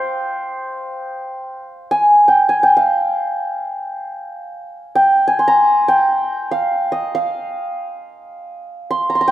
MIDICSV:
0, 0, Header, 1, 2, 480
1, 0, Start_track
1, 0, Tempo, 500000
1, 8941, End_track
2, 0, Start_track
2, 0, Title_t, "Santur"
2, 0, Program_c, 0, 15
2, 0, Note_on_c, 0, 72, 67
2, 0, Note_on_c, 0, 75, 74
2, 0, Note_on_c, 0, 77, 69
2, 0, Note_on_c, 0, 79, 63
2, 1221, Note_off_c, 0, 75, 0
2, 1527, Note_off_c, 0, 79, 0
2, 1737, Note_off_c, 0, 77, 0
2, 1834, Note_on_c, 0, 80, 84
2, 2189, Note_on_c, 0, 79, 69
2, 2240, Note_off_c, 0, 72, 0
2, 2246, Note_off_c, 0, 80, 0
2, 2390, Note_on_c, 0, 80, 76
2, 2448, Note_off_c, 0, 79, 0
2, 2525, Note_on_c, 0, 79, 74
2, 2583, Note_off_c, 0, 80, 0
2, 2656, Note_on_c, 0, 77, 60
2, 4513, Note_off_c, 0, 79, 0
2, 4756, Note_on_c, 0, 79, 80
2, 4788, Note_off_c, 0, 77, 0
2, 5065, Note_on_c, 0, 80, 75
2, 5122, Note_off_c, 0, 79, 0
2, 5174, Note_on_c, 0, 84, 58
2, 5257, Note_on_c, 0, 82, 85
2, 5648, Note_on_c, 0, 79, 78
2, 5705, Note_off_c, 0, 80, 0
2, 6253, Note_on_c, 0, 77, 71
2, 6642, Note_on_c, 0, 75, 64
2, 6846, Note_off_c, 0, 84, 0
2, 6858, Note_off_c, 0, 77, 0
2, 6862, Note_on_c, 0, 77, 65
2, 7052, Note_off_c, 0, 82, 0
2, 7635, Note_off_c, 0, 79, 0
2, 8549, Note_on_c, 0, 84, 76
2, 8733, Note_on_c, 0, 82, 63
2, 8782, Note_off_c, 0, 84, 0
2, 8786, Note_on_c, 0, 84, 60
2, 8837, Note_off_c, 0, 82, 0
2, 8841, Note_on_c, 0, 82, 71
2, 8906, Note_on_c, 0, 79, 77
2, 8930, Note_off_c, 0, 75, 0
2, 8941, Note_off_c, 0, 77, 0
2, 8941, Note_off_c, 0, 79, 0
2, 8941, Note_off_c, 0, 82, 0
2, 8941, Note_off_c, 0, 84, 0
2, 8941, End_track
0, 0, End_of_file